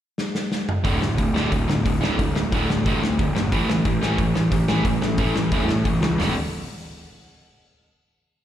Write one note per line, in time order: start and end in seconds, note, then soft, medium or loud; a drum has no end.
0.18 snare medium
0.35 snare medium
0.52 snare medium
0.69 mid tom loud
0.84 1.01 D1 medium
0.84 0.99 D2 medium
0.84 1.00 A2 medium
0.84 1.01 D3 loud
0.84 kick loud
0.84 open hi-hat medium
1.01 1.18 D1 medium
1.01 1.16 D2 medium
1.01 1.17 A2 medium
1.01 snare loud
1.18 1.50 D1 medium
1.18 1.33 D2 medium
1.18 1.34 A2 medium
1.18 kick loud
1.18 open hi-hat medium
1.35 1.50 D2 medium
1.35 1.51 A2 loud
1.35 1.52 D3 loud
1.35 snare loud
1.51 1.68 D1 medium
1.51 1.67 D2 medium
1.51 1.67 A2 medium
1.51 kick loud
1.51 open hi-hat medium
1.68 1.84 D1 medium
1.68 1.83 D2 medium
1.68 1.83 A2 medium
1.68 snare loud
1.85 2.17 D1 medium
1.85 2.00 D2 medium
1.85 2.00 A2 medium
1.85 kick loud
1.85 open hi-hat medium
2.01 2.17 D2 medium
2.01 2.18 A2 medium
2.01 2.18 D3 medium
2.01 snare loud
2.19 2.50 D1 medium
2.19 2.34 D2 medium
2.19 2.34 A2 medium
2.19 kick loud
2.19 open hi-hat medium
2.36 2.51 D2 medium
2.36 2.51 A2 medium
2.36 snare loud
2.52 2.84 D1 medium
2.52 2.69 D2 medium
2.52 2.69 A2 medium
2.52 2.69 D3 loud
2.52 kick loud
2.52 open hi-hat medium
2.70 2.85 D2 medium
2.70 2.85 A2 medium
2.70 snare loud
2.86 3.01 A1 medium
2.86 3.01 D2 medium
2.86 3.02 A2 medium
2.86 3.02 D3 medium
2.86 kick loud
2.86 open hi-hat medium
3.03 3.18 D2 medium
3.03 3.17 D2 medium
3.03 3.18 A2 medium
3.03 snare loud
3.19 3.35 D1 medium
3.19 3.34 D2 medium
3.19 3.34 A2 medium
3.19 kick loud
3.19 open hi-hat medium
3.36 3.51 F#1 medium
3.36 3.51 D2 medium
3.36 3.51 A2 medium
3.36 snare loud
3.52 3.67 A1 loud
3.52 3.68 A2 medium
3.52 3.68 E3 loud
3.52 3.69 A3 loud
3.52 kick loud
3.52 open hi-hat medium
3.68 3.84 A1 medium
3.68 3.84 A2 medium
3.68 3.84 E3 medium
3.68 snare loud
3.85 4.17 A1 medium
3.85 4.00 A2 medium
3.85 4.01 E3 medium
3.85 kick loud
3.85 open hi-hat medium
4.02 4.17 A2 medium
4.02 4.17 E3 loud
4.02 4.18 A3 loud
4.02 snare loud
4.18 4.34 A1 medium
4.18 4.33 A2 medium
4.18 4.33 E3 medium
4.18 kick loud
4.18 open hi-hat medium
4.34 4.51 A1 medium
4.34 4.50 A2 medium
4.34 4.50 E3 medium
4.34 snare loud
4.51 4.83 A1 medium
4.51 4.67 A2 medium
4.51 4.67 E3 medium
4.51 kick loud
4.51 open hi-hat medium
4.68 4.83 A2 medium
4.68 4.83 E3 loud
4.68 4.85 A3 loud
4.68 snare loud
4.84 5.17 A1 medium
4.84 5.00 A2 medium
4.84 5.00 E3 medium
4.84 kick loud
4.84 open hi-hat medium
5.02 5.17 A2 medium
5.02 5.18 E3 medium
5.02 snare loud
5.18 5.50 A1 medium
5.18 5.34 A2 medium
5.18 5.35 E3 medium
5.18 5.35 A3 loud
5.18 kick loud
5.18 open hi-hat medium
5.36 5.51 A2 medium
5.36 5.51 E3 medium
5.36 snare loud
5.52 5.67 E1 medium
5.52 5.68 A2 medium
5.52 5.69 E3 medium
5.52 5.69 A3 medium
5.52 kick loud
5.52 open hi-hat medium
5.68 5.84 A2 medium
5.68 5.85 E3 medium
5.68 snare loud
5.85 6.01 A1 medium
5.85 6.01 A2 medium
5.85 6.01 E3 medium
5.85 kick loud
5.85 open hi-hat medium
6.02 6.18 C#2 medium
6.02 6.18 A2 medium
6.02 6.18 E3 medium
6.02 snare loud
6.18 6.34 D1 loud
6.18 6.33 D2 medium
6.18 6.33 A2 loud
6.18 6.34 D3 loud
6.18 6.34 A3 loud
6.18 6.34 F#4 loud
6.18 snare loud
6.18 floor tom medium
6.18 open hi-hat medium